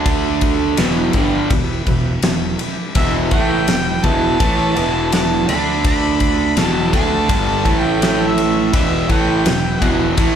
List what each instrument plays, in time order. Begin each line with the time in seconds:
Already playing: fingered electric bass D2, overdriven electric guitar D3 A3 D4, tonewheel organ A3 D4 A4 D5
0.06 kick, ride
0.41 tonewheel organ A3 D4 A4 D5, kick, ride
0.77 fingered electric bass E1, overdriven electric guitar E2 B2 E3, tonewheel organ B3 E4 G4 B4, snare, ride
1.13 fingered electric bass G1, overdriven electric guitar G2 D3 G3, kick, ride
1.50 fingered electric bass E1, overdriven electric guitar E2 B2, kick, ride
1.87 fingered electric bass E1, overdriven electric guitar E2 B2, kick, ride
2.23 fingered electric bass E1, overdriven electric guitar E2 B2, snare, ride
2.59 tonewheel organ B3 E4 G4 D5, ride
2.95 fingered electric bass E1, overdriven electric guitar E2 B2 E3, tonewheel organ B3 E4 G4 B4, harmonica E5, kick, ride
3.31 fingered electric bass A1, overdriven electric guitar A2 E3 A3, tonewheel organ B3 E4 G4 B4, harmonica G5, kick, ride
3.68 fingered electric bass E1, overdriven electric guitar E2 B2, snare, ride
4.04 fingered electric bass E1, overdriven electric guitar E2 B2 E3, harmonica A5, kick, ride
4.39 fingered electric bass A1, overdriven electric guitar A2 E3 A3, kick, ride
4.76 fingered electric bass E1, overdriven electric guitar E2 B2 E3, ride
5.12 harmonica D5 F#5 A5, snare, ride
5.48 fingered electric bass D2, overdriven electric guitar D3 A3 D4, tonewheel organ A3 D4 A4 D5, harmonica B5, ride
5.84 harmonica B5, kick, ride
6.20 tonewheel organ A3 D4 A4 D5, kick, ride
6.57 fingered electric bass E1, overdriven electric guitar E2 B2 E3, tonewheel organ B3 E4 G4 B4, harmonica A5, snare, ride
6.93 fingered electric bass D2, overdriven electric guitar D3 A3 D4, harmonica A5, kick, ride
7.29 fingered electric bass G1, overdriven electric guitar G2 D3 G3, kick, ride
7.65 fingered electric bass A1, overdriven electric guitar A2 E3 A3, tonewheel organ A3 E4 A4 E5, kick, ride
7.79 harmonica G5
8.02 snare, ride
8.27 harmonica E5
8.37 tonewheel organ A3 E4 A4 B4, ride
8.73 fingered electric bass E1, overdriven electric guitar E2 B2 E3, tonewheel organ B3 E4 G4 B4, harmonica G4 B4 E5, kick, ride
9.09 fingered electric bass A1, overdriven electric guitar A2 E3 A3, tonewheel organ B3 E4 G4 B4, harmonica G5, kick, ride
9.45 fingered electric bass E1, overdriven electric guitar E2 B2, snare, ride
9.80 fingered electric bass E1, overdriven electric guitar E2 B2 E3, harmonica F#5, kick, ride
10.17 fingered electric bass A1, overdriven electric guitar A2 E3 A3, kick, ride